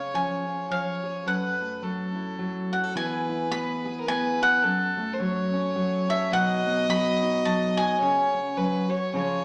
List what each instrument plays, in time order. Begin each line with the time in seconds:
Already playing: steel-string acoustic guitar C#3 C#4 G#4, fiddle C#5, mandolin F5
0.14 steel-string acoustic guitar F3, mandolin G#5
0.47 steel-string acoustic guitar F4
0.70 steel-string acoustic guitar F3, fiddle C#5, mandolin F5
1.03 steel-string acoustic guitar G#4
1.26 steel-string acoustic guitar F#2 A4, fiddle B4, mandolin F#5
1.60 steel-string acoustic guitar A3
1.82 steel-string acoustic guitar F#3, fiddle A4
2.15 steel-string acoustic guitar E4
2.39 steel-string acoustic guitar F#3
2.72 steel-string acoustic guitar F#4, mandolin F#5
2.83 steel-string acoustic guitar A4
2.94 steel-string acoustic guitar E3 B3 E4 G#4, fiddle B4, mandolin G#5
3.29 steel-string acoustic guitar E4
3.51 steel-string acoustic guitar B3 G#4, mandolin B5
3.85 steel-string acoustic guitar G#4
4.00 fiddle A#4
4.06 steel-string acoustic guitar B3, fiddle B4, mandolin G#5
4.42 steel-string acoustic guitar G#4, mandolin F#5
4.62 steel-string acoustic guitar F#2, fiddle A4
4.97 steel-string acoustic guitar A3
5.13 fiddle C5
5.19 steel-string acoustic guitar F#3 A4, fiddle C#5
5.54 steel-string acoustic guitar C#4
5.76 steel-string acoustic guitar F#3
6.09 steel-string acoustic guitar A4, mandolin E5
6.32 steel-string acoustic guitar B2 F#3 B3 D#4 F#4, fiddle D#5, mandolin F#5
6.66 steel-string acoustic guitar B3
6.88 steel-string acoustic guitar F#3 F#4, mandolin B5
7.23 steel-string acoustic guitar D#4
7.45 steel-string acoustic guitar F#3, mandolin A5
7.77 steel-string acoustic guitar F#4, mandolin G#5
8.00 steel-string acoustic guitar C#3, fiddle C#5
8.34 steel-string acoustic guitar C#4
8.57 steel-string acoustic guitar F#3 F#4, fiddle B4
8.89 steel-string acoustic guitar F#4, fiddle C#5
9.14 steel-string acoustic guitar C#3 F3 C#4 F4 G#4, fiddle C#5